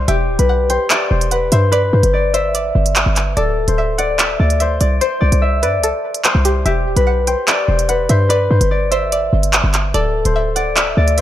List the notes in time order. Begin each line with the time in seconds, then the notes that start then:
Already playing: C5 D5 E5
0.08 E1 G4 E5, closed hi-hat
0.29 D1
0.39 B1 B4, closed hi-hat
0.49 F#5
0.70 C5 G5, closed hi-hat
0.90 D5 E5, clap, closed hi-hat
1.10 E1 C5
1.21 closed hi-hat
1.31 B4 F#5, closed hi-hat
1.52 G2 C5 E5, closed hi-hat
1.72 B4 D5, closed hi-hat
1.93 G2 C5
2.03 G1, closed hi-hat
2.13 D5
2.34 C5 E5, closed hi-hat
2.55 D5, closed hi-hat
2.75 G1
2.86 closed hi-hat
2.96 clap, closed hi-hat
3.06 G1
3.16 clap, closed hi-hat
3.37 D1 A4 D5, closed hi-hat
3.68 D1 C5, closed hi-hat
3.78 E5
3.98 D5 F#5, closed hi-hat
4.18 D5 E5, clap, closed hi-hat
4.40 D2 D5
4.50 closed hi-hat
4.60 C5 E5, closed hi-hat
4.81 C2 D5, closed hi-hat
5.01 C5, closed hi-hat
5.21 C2 D5
5.32 C2, closed hi-hat
5.42 E5
5.63 G2 B4 D5, closed hi-hat
5.78 C2
5.83 A4, closed hi-hat
6.14 closed hi-hat
6.25 C5, clap, closed hi-hat
6.35 C2
6.45 G4, closed hi-hat
6.65 E1 G4 E5, closed hi-hat
6.86 D1
6.96 B1 B4, closed hi-hat
7.07 F#5
7.27 C5 G5, closed hi-hat
7.48 D5 E5, clap, closed hi-hat
7.68 E1 C5
7.79 closed hi-hat
7.89 B4 F#5, closed hi-hat
8.09 G2 C5 E5, closed hi-hat
8.29 B4 D5, closed hi-hat
8.50 G2 C5
8.61 G1, closed hi-hat
8.71 D5
8.91 C5 E5, closed hi-hat
9.12 D5, closed hi-hat
9.33 G1
9.43 closed hi-hat
9.53 clap, closed hi-hat
9.64 G1
9.74 clap, closed hi-hat
9.94 D1 A4 D5, closed hi-hat
10.25 D1 C5, closed hi-hat
10.36 E5
10.56 D5 F#5, closed hi-hat
10.76 D5 E5, clap, closed hi-hat
10.97 D2 D5
11.08 closed hi-hat
11.18 E5, closed hi-hat